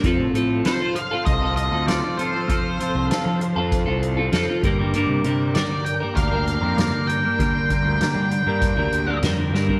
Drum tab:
HH |x-x-x-x-x-x-x-x-|x-x-x-x-x-x-x-x-|x-x-x-x-x-x-x-x-|x-x-x-x-x-x-x---|
SD |----o-------o---|----o-------o---|----o-------o---|----o-------o-o-|
FT |----------------|----------------|----------------|---------------o|
BD |o-------o-------|o-------o-----o-|--------o-------|o-o-----o-------|